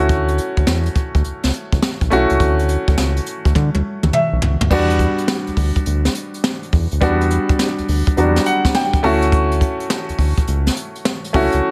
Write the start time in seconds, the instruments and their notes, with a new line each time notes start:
Already playing: analog synth bass D2, grand piano A3 C#4 E4 F#4
0.09 kick, closed hi-hat
0.28 closed hi-hat
0.38 closed hi-hat
0.57 analog synth bass D2, kick, closed hi-hat
0.67 analog synth bass E2, snare
0.86 closed hi-hat
0.95 kick, closed hi-hat
1.15 analog synth bass D2, kick, closed hi-hat
1.24 analog synth bass C#2, closed hi-hat
1.43 analog synth bass C#2, snare, closed hi-hat
1.53 closed hi-hat
1.72 analog synth bass C#2, kick, closed hi-hat
1.82 snare
2.01 analog synth bass B1, kick, closed hi-hat
2.10 analog synth bass B1, grand piano A3 C#4 E4 F#4, closed hi-hat
2.30 analog synth bass C#2, closed hi-hat
2.40 analog synth bass D2, kick, closed hi-hat
2.59 closed hi-hat
2.69 closed hi-hat
2.88 analog synth bass D2, kick, closed hi-hat
2.98 analog synth bass C#2, snare
3.17 closed hi-hat
3.26 closed hi-hat
3.45 analog synth bass D2, kick, closed hi-hat
3.55 analog synth bass D3, kick, high tom
3.75 analog synth bass D2, high tom
4.03 analog synth bass D2, mid tom
4.13 grand piano E5, mid tom
4.33 analog synth bass B1
4.42 analog synth bass C#2, floor tom
4.61 analog synth bass D2, floor tom
4.70 analog synth bass E2, grand piano G3 B3 D4 F#4, kick, crash
4.90 closed hi-hat
4.99 kick, closed hi-hat
5.18 closed hi-hat
5.28 snare
5.47 analog synth bass D2, closed hi-hat
5.57 analog synth bass D2, kick, open hi-hat
5.76 kick, closed hi-hat
5.86 analog synth bass D2, closed hi-hat
6.05 snare, closed hi-hat
6.15 closed hi-hat
6.34 closed hi-hat
6.44 snare
6.63 closed hi-hat
6.72 analog synth bass E2, kick, open hi-hat
6.91 analog synth bass D2, closed hi-hat
7.01 analog synth bass E2, grand piano G3 B3 D4 F#4, kick, closed hi-hat
7.21 closed hi-hat
7.31 closed hi-hat
7.49 kick, closed hi-hat
7.59 snare
7.78 analog synth bass D2, closed hi-hat
7.88 analog synth bass D2, open hi-hat
8.07 kick, closed hi-hat
8.17 analog synth bass E2, grand piano F#3 B3 D4 F#4, closed hi-hat
8.23 grand piano G3
8.36 snare, closed hi-hat
8.46 grand piano F#5, closed hi-hat
8.65 kick, snare, closed hi-hat
8.75 grand piano G5, snare
8.93 kick, closed hi-hat
9.03 analog synth bass D2, grand piano A3 C#4 E4 F#4 A5, open hi-hat
9.22 closed hi-hat
9.32 kick, closed hi-hat
9.52 closed hi-hat
9.61 kick, closed hi-hat
9.80 closed hi-hat
9.90 snare
10.09 analog synth bass D2, closed hi-hat
10.19 analog synth bass D2, kick, open hi-hat
10.38 kick, closed hi-hat
10.47 analog synth bass C#2, closed hi-hat
10.66 snare, closed hi-hat
10.76 closed hi-hat
10.95 closed hi-hat
11.05 snare
11.24 closed hi-hat
11.33 analog synth bass C#2, grand piano A3 C#4 E4 F#4, kick, open hi-hat
11.52 analog synth bass C#2, closed hi-hat